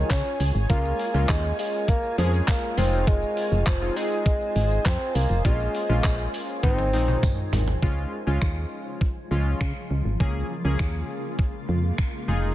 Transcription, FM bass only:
0.10 0.22 C#3 loud
0.40 0.52 C#2 medium
0.55 0.67 G#1 medium
0.70 0.93 C#2 loud
1.14 1.26 C#2 loud
1.29 1.53 D#2 loud
2.18 2.42 F2 loud
2.78 3.24 F1 loud
3.52 3.64 F1 loud
3.67 3.90 F1 medium
4.56 4.79 G#1 medium
4.86 4.97 F2 loud
5.15 5.27 C2 medium
5.30 5.42 F1 medium
5.45 5.68 A#1 loud
5.90 6.01 A#1 loud
6.04 6.28 A#1 medium
6.63 6.95 G#1 loud
6.93 7.17 A#1 loud
7.53 7.76 G#1 medium
7.83 8.06 C#2 loud
8.27 8.39 C#2 medium
8.42 8.65 D#2 medium
9.31 9.55 C#2 loud
9.61 9.73 C#3 loud
9.91 10.02 C#2 medium
10.05 10.17 G#1 medium
10.20 10.44 C#2 loud
10.65 10.77 C#2 loud
10.80 11.03 D#2 loud
11.69 11.92 F2 medium
12.28 12.55 F1 loud

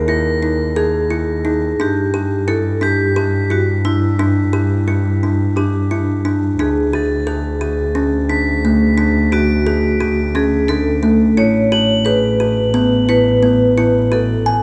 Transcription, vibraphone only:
0.00 0.80 A#4 medium
0.76 1.83 G#4 medium
1.81 2.45 G4 medium
2.48 2.80 A4 medium
2.83 3.53 G4 medium
3.51 3.67 F#4 medium
3.85 5.62 E4 medium
5.56 6.21 D4 medium
6.60 9.41 G#4 medium
9.33 10.31 F#4 medium
10.35 10.67 G#4 medium
10.68 11.39 A4 medium
11.38 12.08 C#5 medium
12.05 13.08 B4 medium
13.09 14.15 B4 medium
14.13 14.63 A4 medium

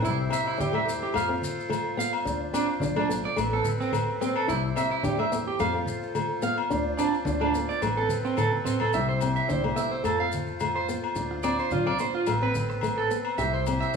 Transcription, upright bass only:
0.04 0.26 C2 medium
0.59 1.02 E2 medium
1.15 1.37 F2 loud
2.25 2.47 D2 loud
2.82 3.25 B1 medium
3.37 3.59 A1 loud
4.49 4.70 C2 loud
5.04 5.47 E2 medium
5.60 5.81 F2 loud
6.71 6.92 D2 loud
7.26 7.69 D2 medium
7.82 8.03 A1 medium
8.94 9.37 C2 loud
9.49 9.70 C2 medium
10.04 10.90 F2 medium
11.15 11.58 D2 medium
11.71 11.92 B1 medium
12.27 13.13 A1 medium
13.38 13.81 C2 medium

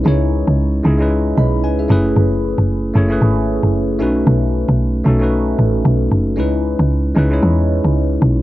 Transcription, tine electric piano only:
0.00 0.04 G#3 medium
0.00 0.05 C#4 medium
0.00 0.06 D#4 medium
0.00 0.07 E4 medium
0.00 1.92 A#4 medium
0.00 1.02 B4 loud
0.00 0.08 C#5 loud
0.04 0.70 G#3 medium
0.04 0.70 C#4 medium
0.04 0.71 D#4 medium
0.04 0.71 E4 medium
0.04 0.72 C#5 loud
0.83 0.96 G#3 loud
0.83 0.97 C#4 medium
0.83 0.97 D#4 medium
0.83 0.98 E4 medium
0.83 0.98 G#4 loud
0.98 1.83 G#3 medium
0.98 1.83 C#4 medium
0.98 1.84 D#4 medium
0.98 1.84 E4 medium
0.98 1.38 B4 loud
1.38 1.63 D#5 medium
1.38 1.63 B5 medium
1.64 1.79 B4 medium
1.64 1.78 G#5 medium
1.79 1.90 G#4 medium
1.79 2.04 E5 medium
1.88 2.74 A3 loud
1.88 2.75 C#4 medium
1.88 2.75 E4 medium
1.88 2.76 G#4 medium
1.88 2.76 B4 loud
2.94 3.07 A3 loud
2.94 3.07 C#4 medium
2.94 3.08 E4 medium
2.94 3.08 G#4 medium
2.94 3.09 C#5 loud
3.09 3.93 A3 medium
3.09 3.94 C#4 medium
3.09 3.94 E4 medium
3.09 3.94 G#4 medium
3.09 3.95 B4 loud
3.99 4.85 A3 loud
3.99 4.85 C#4 medium
3.99 4.86 D#4 medium
3.99 4.86 F#4 medium
3.99 4.87 B4 loud
5.04 5.17 A3 loud
5.04 5.18 C#4 medium
5.04 5.18 D#4 medium
5.04 5.19 F#4 medium
5.04 5.19 A4 loud
5.19 6.04 A3 medium
5.19 6.04 C#4 medium
5.19 6.05 D#4 medium
5.19 6.05 F#4 medium
5.19 6.06 B4 loud
6.36 7.01 G#3 medium
6.36 7.02 C#4 medium
6.36 7.02 D#4 medium
6.36 7.03 E4 medium
6.36 7.03 B4 loud
7.15 7.28 G#3 medium
7.15 7.28 C#4 medium
7.15 7.29 D#4 medium
7.15 7.29 E4 medium
7.15 7.30 B4 loud
7.30 8.14 G#3 medium
7.30 8.15 C#4 medium
7.30 8.15 D#4 medium
7.30 8.16 E4 medium
7.30 8.16 C#5 loud

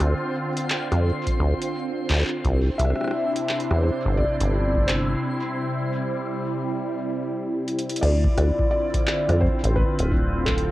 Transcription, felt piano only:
0.00 0.65 C5 medium
2.78 3.87 E5 loud
3.83 4.19 C5 medium
4.17 4.90 D5 loud
4.87 5.24 C5 medium
8.01 8.69 D5 loud
8.71 9.43 D5 loud
9.41 9.77 C5 medium
9.76 10.48 B4 loud
10.45 10.71 A4 medium

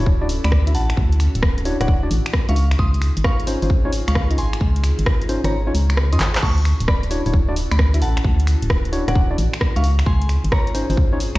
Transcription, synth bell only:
0.44 0.58 D5 medium
0.44 0.58 B5 loud
0.75 0.93 F#5 medium
0.75 0.93 A5 medium
1.81 1.94 D5 medium
1.81 1.94 F#5 medium
2.49 2.62 F5 medium
2.49 2.62 C#6 medium
2.79 3.00 C6 medium
2.79 3.00 D#6 loud
3.24 3.46 F5 medium
3.24 3.46 C#6 loud
4.08 4.21 F5 medium
4.08 4.21 C#6 loud
4.38 4.56 G#5 medium
4.38 4.56 C6 medium
5.44 5.58 C#5 medium
5.44 5.58 A#5 medium
6.12 6.26 C6 medium
6.12 6.26 D#6 medium
6.43 6.64 A5 medium
6.43 6.64 C#6 loud
6.88 7.10 D5 medium
6.88 7.10 B5 loud
7.71 7.85 D5 medium
7.71 7.85 B5 loud
8.02 8.20 F#5 medium
8.02 8.20 A5 medium
9.08 9.21 D5 medium
9.08 9.21 F#5 medium
9.76 9.89 F5 medium
9.76 9.89 C#6 medium
10.06 10.28 G#5 medium
10.06 10.28 C6 loud
10.52 10.73 C#5 medium
10.52 10.73 A#5 loud
11.35 11.38 C#5 medium
11.35 11.38 A#5 loud

